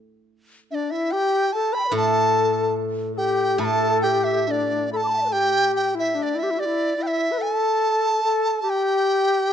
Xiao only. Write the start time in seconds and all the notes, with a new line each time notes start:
0.71 D4
0.92 E4
1.13 G4
1.54 A4
1.72 B4 A5
1.80 G5
1.85 B4 D5
1.93 A4
3.12 A4
3.18 G4
3.59 A4
4.04 G4
4.47 D4
4.92 A4
5.04 B5 D6
5.10 G5 A5
5.16 E5
5.21 B4 D5
5.29 G4 A4
5.95 E4
6.11 D4 E4
6.35 E4
6.43 G4
6.50 E4
6.58 G4
6.65 E4
6.97 E4
7.31 B4
7.38 A4
8.23 A4
8.62 G4